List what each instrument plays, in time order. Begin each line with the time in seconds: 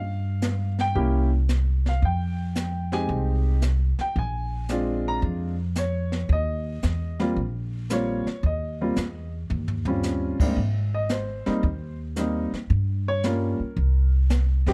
Already playing: upright bass G2, grand piano F5
0.42 snare, hi-hat pedal
0.79 grand piano G5, snare
0.95 upright bass C2, grand piano A#3 C#4 E4 G4, brush sweep, kick
1.49 snare, hi-hat pedal
1.86 grand piano F5, snare
2.02 upright bass F2, grand piano G5, brush sweep, kick
2.55 snare, hi-hat pedal
2.92 grand piano G#3 C4 D#4 G4 G#5, snare
3.09 upright bass C2, brush sweep, kick
3.62 snare, hi-hat pedal
3.99 grand piano G5, muted upright bass stroke, snare
4.16 upright bass A#1, grand piano G#5, brush sweep, kick
4.69 grand piano G#3 C4 D4 F4, snare, hi-hat pedal
5.08 grand piano A#5
5.22 upright bass F2, brush sweep, kick
5.76 grand piano C#5, snare, hi-hat pedal
6.12 snare
6.29 upright bass D#2, grand piano D#5, brush sweep, kick
6.83 upright bass E2, snare, hi-hat pedal
7.19 grand piano G3 A#3 C4 F4, snare
7.36 upright bass A#1, brush sweep, kick
7.90 grand piano G3 A#3 C4 F4 C#5, snare, hi-hat pedal
8.26 muted upright bass stroke, snare
8.43 upright bass D#2, grand piano D#5, brush sweep, kick
8.81 grand piano G3 A#3 C4 F4
8.96 upright bass E2, snare, hi-hat pedal
9.50 upright bass D#2, floor tom
9.68 floor tom
9.85 grand piano G3 C4 C#4 F4, floor tom
10.03 snare, hi-hat pedal
10.39 grand piano G#2 G3 A#3 C4 D4, muted upright bass stroke, kick, crash
10.57 upright bass G#1, brush sweep, kick
10.94 grand piano D#5
11.09 grand piano C5, snare, hi-hat pedal
11.46 grand piano G3 A#3 C4 D#4, muted upright bass stroke, snare
11.63 upright bass D#2, brush sweep, kick
12.16 grand piano G3 A#3 C4 D#4, snare, hi-hat pedal
12.52 muted upright bass stroke, snare
12.70 upright bass G2, brush sweep, kick
13.08 grand piano C#5
13.23 grand piano G3 A#3 C#4 F4 A#4, snare, hi-hat pedal
13.60 muted upright bass stroke
13.77 upright bass C2, brush sweep, kick
14.30 snare, hi-hat pedal
14.66 upright bass F#2, grand piano G#3 C4 D#4 G4, snare